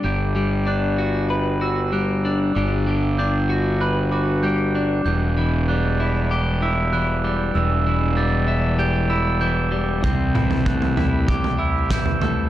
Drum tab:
SD |----------------|----------------|----------------|----------------|
T2 |----------------|----------------|----------------|----------------|
FT |----------------|----------------|----------------|----------------|
BD |----------------|----------------|----------------|----------------|

SD |------------o---|
T2 |--o---------o---|
FT |o--oooo-oo---oo-|
BD |o---o---o---o---|